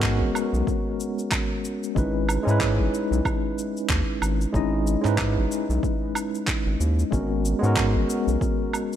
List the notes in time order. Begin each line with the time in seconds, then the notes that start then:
Already playing: G#2 G#3 B3 C#4 F#4 A#4 C#5
0.03 kick, clap, shaker
0.21 G#1
0.35 low woodblock, shaker
0.53 B1, shaker
0.67 kick, shaker
1.00 shaker
1.19 shaker
1.32 kick, clap, low woodblock, shaker
1.65 shaker
1.84 shaker
1.95 G#1 G#3 C#4 D#4 E4 B4, kick, shaker
2.29 low woodblock, shaker
2.43 G#2 G#3 C#4 D#4
2.48 E4 B4, shaker
2.61 kick, clap, shaker
2.79 G#1
2.94 shaker
3.11 B1, shaker
3.25 kick, low woodblock, shaker
3.59 shaker
3.77 shaker
3.90 D#2, kick, clap, shaker
4.22 G#1, low woodblock, shaker
4.41 shaker
4.52 G#1 G#3 C#4 D#4 E4 D#5, kick, shaker
4.87 shaker
5.01 G#2 G#3 C#4 D#4, clap
5.06 E4 B4, shaker
5.18 kick, clap, low woodblock, shaker
5.37 G#1
5.52 shaker
5.69 B1, shaker
5.83 kick, shaker
6.15 low woodblock, shaker
6.35 shaker
6.47 kick, clap, shaker
6.66 G#1
6.80 D#2, shaker
6.99 shaker
7.11 G#1 G#3 B3 C#4 F#4 A#4, kick, shaker
7.45 shaker
7.59 G#2 G#3 B3 C#4
7.64 F#4 A#4, shaker
7.77 kick, clap, low woodblock, shaker
7.95 G#1
8.10 shaker
8.27 B1, shaker
8.41 kick, shaker
8.73 low woodblock, shaker
8.93 shaker